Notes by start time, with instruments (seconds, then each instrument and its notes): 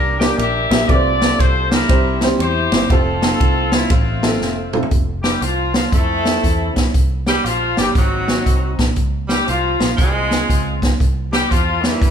Already playing: fingered electric bass C2, horn section A#3 D4 G4 A#4
0.20 upright piano A#3 D4 G4 D5, horn section G4, snare, ride bell
0.38 fingered electric bass A#1, horn section G4 A#4 E5, ride bell
0.71 fingered electric bass A#1, upright piano A#3 D4 G4 E5, snare, ride bell
0.88 fingered electric bass C2, upright piano C3 A3 C4 F4 B4, horn section F4 A4 D5, kick, ride bell
0.95 upright piano C5
1.22 snare, ride bell
1.39 fingered electric bass C2, horn section C5, kick, ride bell
1.71 horn section E4 G4 A#4, snare, ride bell
1.88 fingered electric bass C2, upright piano C3 G3 C4 E4 C5, kick, ride bell
2.21 upright piano G3 C4 E4 C5, snare, ride bell
2.39 fingered electric bass E2, horn section E4 G4 C5, ride bell
2.72 fingered electric bass G1, upright piano G3 C4 E4 C5, snare, ride bell
2.90 fingered electric bass F1, upright piano A3 C4 F4 C5, horn section C4 F4 A4, kick, ride bell
3.22 snare, ride bell
3.40 fingered electric bass C2, kick, ride bell
3.72 horn section E4, snare, ride bell
3.90 fingered electric bass A1, horn section A3 C4 F4, kick, ride bell
4.23 upright piano A3 C4 F4 A4, snare, ride bell
4.40 fingered electric bass F1, snare
4.73 upright piano A3 C4 F4 A4, mid tom
4.83 floor tom
4.91 fingered electric bass F1, kick, closed hi-hat
5.23 tenor saxophone G3, horn section G4, snare, closed hi-hat
5.41 fingered electric bass C2, tenor saxophone F3, horn section F4, closed hi-hat
5.74 tenor saxophone F3, horn section F4, snare, closed hi-hat
5.92 fingered electric bass F2, tenor saxophone A3, horn section C4 E4 A4, kick, closed hi-hat
6.25 snare, closed hi-hat
6.44 fingered electric bass E2, kick, closed hi-hat
6.76 fingered electric bass A#1, kick, snare, closed hi-hat
6.94 fingered electric bass C2, kick, closed hi-hat
7.27 tenor saxophone G3, horn section G4, snare, closed hi-hat
7.44 fingered electric bass A#1, tenor saxophone F3, horn section F4, closed hi-hat
7.77 fingered electric bass G1, tenor saxophone G3, horn section G4, snare, closed hi-hat
7.95 fingered electric bass G#1, tenor saxophone F#3, horn section C4 D#4 F#4, kick, closed hi-hat
8.28 snare, closed hi-hat
8.46 fingered electric bass C2, kick, closed hi-hat
8.79 fingered electric bass A#1, kick, snare, closed hi-hat
8.96 fingered electric bass C#2, kick, closed hi-hat
9.28 tenor saxophone G3, horn section G4, snare, closed hi-hat
9.46 fingered electric bass C2, tenor saxophone F3, horn section F4, closed hi-hat
9.79 fingered electric bass A#1, tenor saxophone F3, horn section F4, snare, closed hi-hat
9.96 fingered electric bass C2, tenor saxophone G#3, horn section C4 G#4, kick, closed hi-hat
10.00 horn section F4
10.31 snare, closed hi-hat
10.49 fingered electric bass C#2, kick, closed hi-hat
10.82 kick, snare, closed hi-hat
11.00 fingered electric bass C2, kick, closed hi-hat
11.33 tenor saxophone G3, horn section G4, snare, closed hi-hat
11.50 fingered electric bass E2, tenor saxophone F3, horn section F4, kick, closed hi-hat
11.81 tenor saxophone E3, horn section G3 E4, snare, closed hi-hat
11.85 horn section A#3
12.01 fingered electric bass D2, kick, closed hi-hat